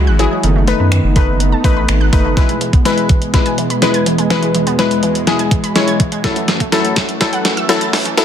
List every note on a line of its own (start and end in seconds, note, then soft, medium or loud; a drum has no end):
0.00 0.11 F#3 loud
0.00 0.42 G#3 medium
0.00 0.11 E4 medium
0.00 0.41 E4 medium
0.00 0.41 F#4 medium
0.00 0.11 G#4 loud
0.07 0.27 G#1 medium
0.07 0.17 F#6 medium
0.19 0.29 E3 medium
0.19 0.43 F#3 loud
0.19 0.43 E4 medium
0.19 0.44 G#4 loud
0.19 closed hi-hat medium
0.31 0.42 G#3 medium
0.43 0.73 F#1 loud
0.43 0.54 D#3 medium
0.43 2.35 A3 medium
0.43 2.35 B3 medium
0.43 2.35 D#4 medium
0.43 closed hi-hat medium
0.56 0.66 A3 medium
0.67 0.78 D#3 medium
0.67 1.08 A3 medium
0.67 1.08 D#4 medium
0.67 1.08 B4 loud
0.67 closed hi-hat medium
0.80 1.00 F#2 medium
0.80 0.90 B3 medium
0.92 1.02 D#3 medium
0.92 finger snap loud
0.92 closed hi-hat medium
1.04 1.54 F#1 medium
1.16 1.26 D#3 medium
1.16 1.56 A3 medium
1.16 1.56 D#4 medium
1.16 1.57 B4 loud
1.16 kick medium
1.16 closed hi-hat medium
1.40 closed hi-hat medium
1.52 1.62 A5 medium
1.64 1.86 A1 medium
1.64 1.75 D#3 medium
1.64 2.05 A3 medium
1.64 2.05 D#4 medium
1.64 2.05 B4 loud
1.64 kick medium
1.64 closed hi-hat medium
1.77 1.87 B5 medium
1.88 2.10 G#1 medium
1.88 finger snap loud
1.88 closed hi-hat medium
2.01 2.11 F#6 medium
2.13 2.35 F#1 medium
2.13 2.23 D#3 medium
2.13 2.37 A3 medium
2.13 2.37 D#4 medium
2.13 2.36 B4 loud
2.13 kick medium
2.13 closed hi-hat medium
2.25 2.35 A3 medium
2.37 6.20 E2 medium
2.37 6.20 B2 medium
2.37 2.47 E3 medium
2.37 2.77 G#3 medium
2.37 6.20 G#3 medium
2.37 2.77 E4 medium
2.37 2.77 B4 medium
2.37 kick loud
2.37 snare medium
2.37 closed hi-hat medium
2.49 2.59 G#3 medium
2.49 closed hi-hat medium
2.61 2.71 E3 medium
2.61 closed hi-hat medium
2.73 2.83 B3 medium
2.73 kick medium
2.73 closed hi-hat medium
2.85 2.96 E3 medium
2.85 3.26 G#3 loud
2.85 3.26 E4 medium
2.85 3.26 B4 loud
2.85 snare medium
2.85 closed hi-hat medium
2.98 closed hi-hat medium
3.09 3.20 E3 medium
3.09 kick medium
3.09 closed hi-hat medium
3.22 closed hi-hat medium
3.34 3.74 G#3 medium
3.34 3.74 E4 medium
3.34 3.74 B4 loud
3.34 kick medium
3.34 snare medium
3.34 closed hi-hat medium
3.46 3.56 G#5 medium
3.46 closed hi-hat soft
3.58 3.68 E3 medium
3.58 closed hi-hat medium
3.70 3.80 B5 medium
3.70 closed hi-hat medium
3.82 4.22 G#3 loud
3.82 4.23 E4 medium
3.82 4.23 B4 loud
3.82 snare medium
3.82 closed hi-hat medium
3.94 4.04 G#6 medium
3.94 closed hi-hat medium
4.06 4.17 E3 medium
4.06 closed hi-hat medium
4.18 4.29 G#3 medium
4.18 closed hi-hat medium
4.30 4.41 E3 medium
4.30 4.71 G#3 medium
4.30 4.71 E4 medium
4.30 4.71 B4 loud
4.30 snare medium
4.30 closed hi-hat medium
4.43 4.53 G#3 medium
4.43 closed hi-hat medium
4.55 4.65 E3 medium
4.55 closed hi-hat medium
4.67 4.77 B3 medium
4.67 closed hi-hat medium
4.79 4.89 E3 medium
4.79 5.19 G#3 loud
4.79 5.19 E4 medium
4.79 5.19 B4 loud
4.79 snare medium
4.79 closed hi-hat medium
4.91 closed hi-hat medium
5.03 5.13 E3 medium
5.03 closed hi-hat medium
5.15 closed hi-hat medium
5.27 5.68 G#3 medium
5.27 5.68 E4 medium
5.27 5.68 G#4 loud
5.27 snare medium
5.27 closed hi-hat medium
5.39 5.50 G#5 medium
5.39 closed hi-hat medium
5.51 5.62 E3 medium
5.51 kick medium
5.51 closed hi-hat medium
5.64 5.74 B5 medium
5.64 closed hi-hat medium
5.75 6.16 G#3 loud
5.75 6.16 E4 medium
5.75 6.16 C#5 loud
5.75 snare medium
5.75 closed hi-hat medium
5.88 5.98 G#6 medium
5.88 closed hi-hat medium
6.00 6.10 E3 medium
6.00 kick loud
6.00 closed hi-hat medium
6.12 6.22 G#3 medium
6.12 closed hi-hat medium
6.24 8.25 F#2 medium
6.24 6.34 F#2 loud
6.24 8.25 E3 medium
6.24 6.64 F#3 medium
6.24 8.25 A3 medium
6.24 6.64 E4 medium
6.24 6.65 A4 medium
6.24 kick loud
6.24 snare medium
6.24 closed hi-hat medium
6.36 6.46 E3 medium
6.36 closed hi-hat medium
6.48 6.58 F#2 medium
6.48 snare medium
6.48 closed hi-hat medium
6.60 6.70 A3 medium
6.60 kick medium
6.60 closed hi-hat medium
6.72 6.83 F#2 medium
6.72 7.13 F#3 loud
6.72 7.13 E4 medium
6.72 7.13 A4 loud
6.72 snare medium
6.72 closed hi-hat medium
6.85 closed hi-hat medium
6.96 7.07 F#2 medium
6.96 kick loud
6.96 snare medium
6.96 closed hi-hat medium
7.09 closed hi-hat medium
7.21 7.61 F#3 medium
7.21 7.61 E4 medium
7.21 7.61 A4 loud
7.21 kick medium
7.21 snare medium
7.21 closed hi-hat medium
7.33 7.43 F#5 medium
7.33 closed hi-hat medium
7.45 7.55 F#2 medium
7.45 snare loud
7.45 closed hi-hat medium
7.57 7.67 E6 medium
7.57 closed hi-hat medium
7.69 8.09 F#3 loud
7.69 8.10 E4 medium
7.69 8.10 A4 loud
7.69 snare loud
7.69 closed hi-hat medium
7.81 7.91 A6 medium
7.81 closed hi-hat medium
7.93 8.04 F#2 medium
7.93 snare loud
7.93 open hi-hat medium
8.05 8.16 E3 medium
8.05 closed hi-hat medium
8.17 8.25 F#2 loud
8.17 8.25 F#3 loud
8.17 8.25 E4 medium
8.17 8.25 A4 loud
8.17 snare loud
8.17 closed hi-hat medium